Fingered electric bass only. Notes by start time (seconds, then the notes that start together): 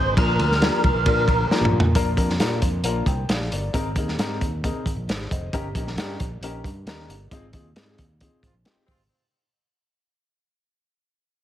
Already playing: G#1
0.17 A#1
0.39 D2
0.83 C2
0.94 A#1
1.06 A#2
1.27 A#1
1.61 A#1
1.73 A#2
1.95 A#1
2.17 F2
2.40 A#2
2.62 F2
2.83 A#1
3.06 C2
3.29 A#1
3.52 G1
3.73 G#1
3.95 D#2
4.18 G#2
4.41 D#2
4.86 G#1
4.96 A#1
5.08 G#1
5.31 F1
5.53 G1
5.75 A#1
5.96 G2
6.20 A#1
6.41 A#1
6.64 G2
6.86 D#2
7.09 G1
7.31 G#1
7.53 D#2
7.76 G#2
7.99 D#2
8.42 G#1
8.54 A#1
8.88 G#1